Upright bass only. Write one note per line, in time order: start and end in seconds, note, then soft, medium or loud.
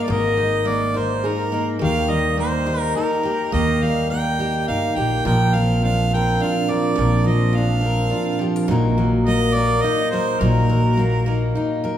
0.09 1.20 G#1 medium
1.82 2.92 D#2 medium
3.54 4.64 D#2 medium
4.69 4.94 G1 medium
4.97 5.22 A#1 medium
5.25 6.36 A#1 medium
6.98 8.08 A#1 medium
8.68 9.79 A#1 medium
10.40 11.51 A#1 medium